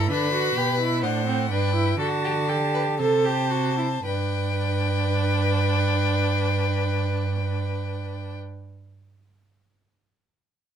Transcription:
Already playing: G2 E4 A4
0.10 D3 D4 B4 B5
0.33 F#4
0.56 B2 G4
0.80 E4
1.03 A2 D4 C5 F#5
1.27 C4
1.50 G2 D4 B4 G5
1.75 E4
1.99 D3 F#4 A4 A5
2.25 G4
2.48 G4 A4
2.74 B4
2.99 C3 A4 C5 A5
3.25 G4
3.50 F#4
3.78 E4
4.05 G2 D4 B4 G5

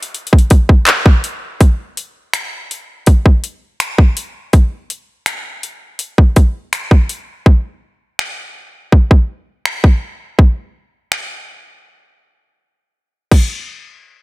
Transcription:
0.03 closed hi-hat
0.14 closed hi-hat
0.27 closed hi-hat
0.33 kick
0.39 closed hi-hat
0.50 kick, closed hi-hat
0.69 kick
0.87 clap, closed hi-hat
1.06 kick
1.24 closed hi-hat
1.60 kick, closed hi-hat
1.97 closed hi-hat
2.33 finger snap, closed hi-hat
2.71 closed hi-hat
3.06 kick, closed hi-hat
3.26 kick
3.44 closed hi-hat
3.80 finger snap, closed hi-hat
3.98 kick
4.17 closed hi-hat
4.53 kick, closed hi-hat
4.90 closed hi-hat
5.26 finger snap, closed hi-hat
5.63 closed hi-hat
5.99 closed hi-hat
6.18 kick
6.36 kick, closed hi-hat
6.73 finger snap, closed hi-hat
6.91 kick
7.09 closed hi-hat
7.46 kick
8.19 finger snap
8.92 kick
9.11 kick
9.65 finger snap
9.84 kick
10.39 kick
11.12 finger snap
13.31 kick, crash

